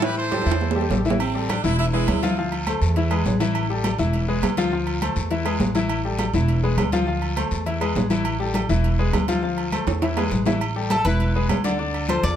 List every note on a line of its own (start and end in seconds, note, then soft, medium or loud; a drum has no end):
0.00 0.41 A2 medium
0.00 0.26 E3 medium
0.00 0.26 E4 medium
0.00 0.18 G4 medium
0.00 0.17 B4 loud
0.00 0.26 E5 medium
0.00 high conga soft
0.00 high timbale medium
0.00 long guiro medium
0.17 1.01 A4 medium
0.17 1.01 C5 loud
0.17 high conga soft
0.31 0.43 G3 medium
0.31 0.44 G4 medium
0.31 0.44 A4 medium
0.31 high conga medium
0.31 high timbale medium
0.31 short guiro medium
0.42 high timbale medium
0.46 0.87 E2 medium
0.46 0.70 E3 medium
0.46 0.70 E4 medium
0.46 0.71 E5 medium
0.46 high conga soft
0.46 short guiro medium
0.52 high timbale medium
0.61 high conga soft
0.61 low timbale medium
0.61 long guiro medium
0.71 low timbale medium
0.75 0.87 G3 medium
0.75 0.88 G4 medium
0.75 0.88 A4 medium
0.75 high conga soft
0.81 low timbale medium
0.90 1.58 A1 medium
0.90 1.02 G3 medium
0.90 1.03 G4 medium
0.90 1.03 A4 medium
0.90 high conga medium
0.90 low timbale medium
0.90 short guiro medium
1.05 1.17 E3 medium
1.05 1.17 E4 medium
1.05 1.18 E5 loud
1.05 high conga medium
1.05 short guiro medium
1.10 low timbale loud
1.19 1.47 C4 medium
1.19 low agogo loud
1.19 long guiro medium
1.34 1.58 G3 medium
1.34 1.59 G4 medium
1.34 1.59 A4 medium
1.34 high conga soft
1.49 1.64 D4 loud
1.49 high conga loud
1.49 low timbale medium
1.49 low agogo loud
1.49 short guiro medium
1.64 2.05 E1 loud
1.64 1.88 E3 medium
1.64 1.77 E4 loud
1.64 1.88 E4 medium
1.64 1.88 E5 medium
1.64 high conga soft
1.64 short guiro medium
1.78 1.85 E4 medium
1.78 high conga soft
1.78 low agogo medium
1.78 long guiro medium
1.93 2.17 G#3 medium
1.93 2.48 E4 loud
1.93 2.18 G#4 medium
1.93 2.18 B4 medium
1.93 high conga soft
2.08 2.76 D2 medium
2.08 high conga medium
2.08 low timbale medium
2.08 low agogo loud
2.08 short guiro medium
2.23 2.35 F3 medium
2.23 2.35 F4 loud
2.23 2.35 F5 loud
2.23 high conga medium
2.23 low agogo medium
2.23 short guiro medium
2.37 2.62 F3 medium
2.37 2.62 F4 medium
2.37 2.62 F5 medium
2.37 high conga soft
2.37 long guiro medium
2.52 high conga soft
2.52 low agogo medium
2.67 2.91 A3 medium
2.67 2.91 A4 medium
2.67 2.91 C5 medium
2.67 high conga medium
2.67 low timbale medium
2.67 low agogo loud
2.67 short guiro medium
2.81 3.22 E2 loud
2.81 high conga soft
2.81 short guiro medium
2.96 3.08 E3 medium
2.96 3.09 E4 medium
2.96 3.09 E5 medium
2.96 high conga soft
2.96 low agogo medium
2.96 long guiro medium
3.11 3.35 G#3 medium
3.11 3.35 G#4 medium
3.11 3.35 B4 medium
3.11 high conga soft
3.11 low agogo loud
3.25 3.93 A1 loud
3.25 high conga medium
3.25 low timbale medium
3.25 short guiro medium
3.40 3.64 E3 loud
3.40 3.64 E4 loud
3.40 3.64 E5 loud
3.40 high conga medium
3.40 low agogo medium
3.40 short guiro medium
3.55 high conga soft
3.55 low agogo loud
3.55 long guiro medium
3.70 3.94 G3 medium
3.70 3.94 G4 medium
3.70 3.94 A4 medium
3.70 high conga soft
3.84 high conga loud
3.84 low timbale medium
3.84 low agogo loud
3.84 short guiro medium
3.98 4.40 E1 loud
3.98 4.23 E3 medium
3.98 4.23 E4 medium
3.98 4.23 E5 medium
3.98 high conga soft
3.98 short guiro medium
4.13 high conga soft
4.13 low agogo medium
4.13 long guiro medium
4.28 4.52 G#3 medium
4.28 4.52 G#4 medium
4.28 4.52 B4 medium
4.28 high conga soft
4.42 5.10 D2 medium
4.42 high conga medium
4.42 low timbale medium
4.42 low agogo loud
4.42 short guiro medium
4.57 4.70 F3 loud
4.57 4.70 F4 loud
4.57 4.70 F5 loud
4.57 high conga medium
4.57 low agogo medium
4.57 short guiro medium
4.72 4.96 F3 medium
4.72 4.97 F4 medium
4.72 4.97 F5 medium
4.72 high conga soft
4.72 long guiro medium
4.87 high conga soft
4.87 low agogo medium
5.01 5.26 A3 medium
5.01 5.26 A4 medium
5.01 5.26 C5 medium
5.01 high conga medium
5.01 low timbale medium
5.01 low agogo loud
5.01 short guiro medium
5.16 5.57 E2 medium
5.16 high conga soft
5.16 short guiro medium
5.31 5.43 E3 medium
5.31 5.43 E4 medium
5.31 5.43 E5 medium
5.31 high conga soft
5.31 low agogo medium
5.31 long guiro medium
5.45 5.69 G#3 medium
5.45 5.70 G#4 medium
5.45 5.70 B4 medium
5.45 high conga soft
5.45 low agogo loud
5.60 6.28 A1 medium
5.60 high conga medium
5.60 low timbale medium
5.60 short guiro medium
5.75 5.99 E3 medium
5.75 5.99 E4 loud
5.75 6.00 E5 loud
5.75 high conga medium
5.75 low agogo medium
5.75 short guiro medium
5.89 high conga soft
5.89 low agogo loud
5.89 long guiro medium
6.04 6.29 G3 medium
6.04 6.29 G4 medium
6.04 6.29 A4 medium
6.04 high conga soft
6.19 high conga loud
6.19 low timbale medium
6.19 low agogo loud
6.19 short guiro medium
6.34 6.75 E1 loud
6.34 6.58 E3 medium
6.34 6.58 E4 medium
6.34 6.58 E5 medium
6.34 high conga soft
6.34 short guiro medium
6.48 high conga soft
6.48 low agogo medium
6.48 long guiro medium
6.63 6.87 G#3 medium
6.63 6.87 G#4 medium
6.63 6.88 B4 medium
6.63 high conga soft
6.77 7.46 D2 medium
6.77 high conga medium
6.77 low timbale medium
6.77 low agogo loud
6.77 short guiro medium
6.92 7.05 F3 loud
6.92 7.05 F4 loud
6.92 7.05 F5 loud
6.92 high conga medium
6.92 low agogo medium
6.92 short guiro medium
7.07 7.31 F3 medium
7.07 7.31 F4 medium
7.07 7.32 F5 medium
7.07 high conga soft
7.07 long guiro medium
7.22 high conga soft
7.22 low agogo medium
7.36 7.60 A3 medium
7.36 7.61 A4 medium
7.36 7.61 C5 medium
7.36 high conga medium
7.36 low timbale medium
7.36 low agogo loud
7.36 short guiro medium
7.51 7.92 E2 loud
7.51 high conga soft
7.51 short guiro medium
7.66 7.78 E3 medium
7.66 7.78 E4 medium
7.66 7.78 E5 medium
7.66 high conga soft
7.66 low agogo medium
7.66 long guiro medium
7.81 8.05 G#3 medium
7.81 8.05 G#4 medium
7.81 8.05 B4 medium
7.81 high conga soft
7.81 low agogo loud
7.95 8.64 A1 medium
7.95 high conga medium
7.95 low timbale medium
7.95 short guiro medium
8.10 8.34 E3 loud
8.10 8.35 E4 loud
8.10 8.35 E5 loud
8.10 high conga medium
8.10 low agogo medium
8.10 short guiro medium
8.24 high conga soft
8.24 low agogo loud
8.24 long guiro medium
8.40 8.64 G3 medium
8.40 8.64 G4 medium
8.40 8.64 A4 medium
8.40 high conga soft
8.54 high conga loud
8.54 low timbale medium
8.54 low agogo loud
8.54 short guiro medium
8.69 9.10 E1 loud
8.69 8.93 E3 loud
8.69 8.94 E4 medium
8.69 8.94 E5 medium
8.69 high conga soft
8.69 short guiro medium
8.84 high conga soft
8.84 low agogo medium
8.84 long guiro medium
8.98 9.23 G#3 medium
8.98 9.23 G#4 medium
8.98 9.23 B4 medium
8.98 high conga soft
9.13 9.81 D2 medium
9.13 high conga medium
9.13 low timbale medium
9.13 low agogo loud
9.13 short guiro medium
9.28 9.40 F3 loud
9.28 9.40 F4 medium
9.28 9.41 F5 loud
9.28 high conga medium
9.28 low agogo medium
9.28 short guiro medium
9.43 9.67 F3 medium
9.43 9.67 F4 medium
9.43 9.68 F5 medium
9.43 high conga soft
9.43 long guiro medium
9.58 high conga soft
9.58 low agogo medium
9.72 9.97 A3 medium
9.72 9.97 A4 medium
9.72 9.97 C5 medium
9.72 high conga medium
9.72 low timbale medium
9.72 low agogo loud
9.72 short guiro medium
9.87 10.28 E2 loud
9.87 high conga soft
9.87 high timbale loud
9.87 short guiro medium
10.02 10.14 E3 medium
10.02 10.14 E4 medium
10.02 10.14 E5 medium
10.02 high conga soft
10.02 high timbale medium
10.02 low agogo medium
10.02 long guiro medium
10.17 10.41 G#3 medium
10.17 10.41 G#4 medium
10.17 10.41 B4 medium
10.17 high conga soft
10.17 low timbale medium
10.17 low agogo loud
10.31 11.00 A1 medium
10.31 high conga medium
10.31 short guiro medium
10.46 10.58 E3 loud
10.46 10.58 E4 medium
10.46 10.59 E5 loud
10.46 high conga medium
10.46 low timbale loud
10.46 low agogo medium
10.46 short guiro medium
10.61 high conga soft
10.61 low agogo loud
10.61 long guiro medium
10.76 11.00 G3 medium
10.76 11.00 G4 medium
10.76 11.00 A4 medium
10.76 high conga soft
10.90 11.05 A4 medium
10.90 high conga loud
10.90 low timbale medium
10.90 low agogo loud
10.90 short guiro medium
11.05 11.46 E1 loud
11.05 11.30 E3 medium
11.05 11.30 E4 loud
11.05 11.46 B4 medium
11.05 11.30 E5 medium
11.05 high conga soft
11.05 short guiro medium
11.20 high conga soft
11.20 low agogo medium
11.20 long guiro medium
11.35 11.60 G#3 medium
11.35 11.60 G#4 medium
11.35 11.60 B4 medium
11.35 high conga soft
11.49 12.18 D2 medium
11.49 high conga medium
11.49 low timbale medium
11.49 low agogo loud
11.49 short guiro medium
11.64 11.77 D3 loud
11.64 11.77 D4 medium
11.64 11.77 D5 loud
11.64 high conga medium
11.64 low agogo medium
11.64 short guiro medium
11.79 12.03 D3 medium
11.79 12.04 D4 medium
11.79 12.04 D5 medium
11.79 high conga soft
11.79 long guiro medium
11.94 high conga soft
11.94 low agogo medium
12.09 12.33 F3 medium
12.09 12.33 F4 medium
12.09 12.34 A4 medium
12.09 12.23 C5 medium
12.09 high conga medium
12.09 low timbale medium
12.09 low agogo loud
12.09 short guiro medium
12.23 12.36 E2 loud
12.23 12.36 D5 medium
12.23 high conga soft
12.23 short guiro medium